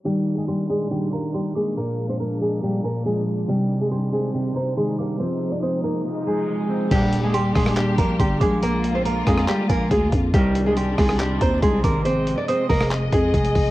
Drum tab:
CC |----------------|----------------|----------------|----------------|
HH |----------------|----------------|----------------|----------------|
CP |----------------|----------------|----------------|----------------|
SD |----------------|----------------|----------------|----------------|
BD |----------------|----------------|----------------|----------------|

CC |x---------------|----------------|----------------|----------------|
HH |x-x-x-o-x-x-x-x-|x-x-x-x-x-x-x-x-|x-x-x-o-x-x-x-x-|x-x-x-o-x-x-xxo-|
CP |--------x-------|--------x-------|--------x-------|--------x-------|
SD |------rr--------|------rr--------|------rr--------|-------r--------|
BD |o-----o---o-o-o-|------o---o-o-o-|o-----o---o-o-o-|------o---o-o-o-|